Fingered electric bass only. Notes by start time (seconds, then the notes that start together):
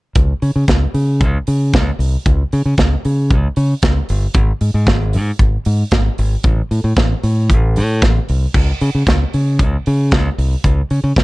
0.16 C#2
0.42 C#3
0.56 C#3
0.68 C#2
0.94 C#3
1.21 C#2
1.48 C#3
1.74 C#2
1.99 C2
2.26 C#2
2.53 C#3
2.66 C#3
2.78 C#2
3.05 C#3
3.31 C#2
3.57 C#3
3.83 C#2
4.10 G1
4.35 G#1
4.61 G#2
4.74 G#2
4.87 G#1
5.14 G#2
5.40 G#1
5.66 G#2
5.92 G#1
6.19 G#1
6.44 A1
6.71 A2
6.84 A2
6.97 A1
7.23 A2
7.50 A1
7.77 A2
8.02 A1
8.29 C2
8.54 C#2
8.81 C#3
8.95 C#3
9.07 C#2
9.34 C#3
9.60 C#2
9.87 C#3
10.12 C#2
10.38 C2
10.65 C#2
10.91 C#3
11.04 C#3
11.17 C#2